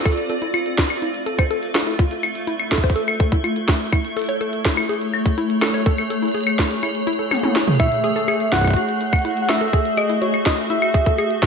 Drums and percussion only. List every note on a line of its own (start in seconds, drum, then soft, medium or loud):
0.05 kick loud
0.05 closed hi-hat medium
0.05 claves medium
0.18 closed hi-hat soft
0.30 closed hi-hat medium
0.42 closed hi-hat soft
0.54 closed hi-hat medium
0.54 claves medium
0.66 closed hi-hat soft
0.78 kick medium
0.78 snare loud
0.78 closed hi-hat medium
0.90 closed hi-hat soft
0.90 claves medium
1.02 closed hi-hat medium
1.14 closed hi-hat soft
1.26 closed hi-hat medium
1.39 kick medium
1.39 closed hi-hat soft
1.39 claves medium
1.51 closed hi-hat medium
1.63 closed hi-hat soft
1.75 snare loud
1.75 closed hi-hat medium
1.75 claves soft
1.87 closed hi-hat soft
1.99 kick loud
1.99 closed hi-hat medium
2.11 closed hi-hat soft
2.23 closed hi-hat medium
2.23 claves medium
2.35 closed hi-hat soft
2.47 closed hi-hat medium
2.60 closed hi-hat soft
2.60 claves soft
2.72 kick soft
2.72 snare loud
2.72 closed hi-hat medium
2.78 kick soft
2.84 kick medium
2.84 closed hi-hat soft
2.90 kick medium
2.96 closed hi-hat medium
3.08 closed hi-hat soft
3.08 claves medium
3.20 kick loud
3.20 closed hi-hat medium
3.32 kick medium
3.32 closed hi-hat soft
3.44 closed hi-hat medium
3.44 claves soft
3.56 closed hi-hat soft
3.68 kick loud
3.68 snare loud
3.68 closed hi-hat medium
3.93 kick loud
3.93 closed hi-hat medium
3.93 claves medium
4.05 closed hi-hat soft
4.17 closed hi-hat medium
4.19 closed hi-hat medium
4.22 closed hi-hat medium
4.24 closed hi-hat soft
4.26 closed hi-hat soft
4.29 closed hi-hat soft
4.41 closed hi-hat medium
4.53 closed hi-hat soft
4.65 kick medium
4.65 snare loud
4.65 closed hi-hat medium
4.77 closed hi-hat soft
4.77 claves medium
4.85 closed hi-hat soft
4.89 closed hi-hat medium
4.93 closed hi-hat soft
5.02 closed hi-hat soft
5.14 claves medium
5.26 kick medium
5.26 closed hi-hat medium
5.38 closed hi-hat medium
5.50 closed hi-hat soft
5.62 snare loud
5.62 closed hi-hat medium
5.62 claves medium
5.74 closed hi-hat soft
5.86 kick loud
5.86 closed hi-hat medium
5.98 closed hi-hat soft
5.98 claves medium
6.10 closed hi-hat medium
6.23 closed hi-hat soft
6.26 closed hi-hat soft
6.29 closed hi-hat soft
6.32 closed hi-hat soft
6.35 closed hi-hat medium
6.38 closed hi-hat soft
6.41 closed hi-hat soft
6.44 closed hi-hat soft
6.47 closed hi-hat soft
6.47 claves medium
6.59 kick medium
6.59 snare loud
6.59 closed hi-hat medium
6.71 closed hi-hat soft
6.83 closed hi-hat medium
6.83 claves medium
6.95 closed hi-hat soft
7.07 closed hi-hat medium
7.13 closed hi-hat soft
7.31 closed hi-hat soft
7.31 high tom medium
7.31 claves medium
7.35 closed hi-hat soft
7.39 closed hi-hat medium
7.43 closed hi-hat soft
7.43 high tom medium
7.56 snare loud
7.56 closed hi-hat medium
7.68 closed hi-hat soft
7.68 mid tom medium
7.70 closed hi-hat soft
7.73 closed hi-hat soft
7.75 closed hi-hat soft
7.77 kick loud
7.77 closed hi-hat soft
7.80 closed hi-hat medium
7.80 claves medium
7.92 closed hi-hat soft
8.04 closed hi-hat loud
8.16 closed hi-hat soft
8.28 closed hi-hat medium
8.28 claves medium
8.40 closed hi-hat soft
8.52 kick soft
8.52 snare loud
8.52 closed hi-hat loud
8.55 kick soft
8.58 kick soft
8.61 kick medium
8.64 kick medium
8.64 closed hi-hat soft
8.64 claves medium
8.67 kick medium
8.70 kick medium
8.73 kick medium
8.73 closed hi-hat medium
8.89 closed hi-hat soft
9.01 closed hi-hat medium
9.13 kick medium
9.13 closed hi-hat soft
9.13 claves medium
9.16 closed hi-hat soft
9.19 closed hi-hat soft
9.22 closed hi-hat soft
9.25 closed hi-hat medium
9.28 closed hi-hat soft
9.31 closed hi-hat soft
9.34 closed hi-hat soft
9.37 closed hi-hat soft
9.49 snare loud
9.49 closed hi-hat loud
9.49 claves medium
9.61 closed hi-hat soft
9.73 kick loud
9.73 closed hi-hat medium
9.85 closed hi-hat soft
9.98 closed hi-hat loud
9.98 claves medium
10.10 closed hi-hat soft
10.22 closed hi-hat medium
10.34 closed hi-hat soft
10.34 claves soft
10.46 kick medium
10.46 snare loud
10.46 closed hi-hat loud
10.58 closed hi-hat soft
10.70 closed hi-hat medium
10.82 closed hi-hat soft
10.82 claves medium
10.94 kick loud
10.94 closed hi-hat medium
11.06 kick medium
11.06 closed hi-hat soft
11.18 closed hi-hat medium
11.18 claves medium
11.31 closed hi-hat soft
11.43 kick loud
11.43 snare loud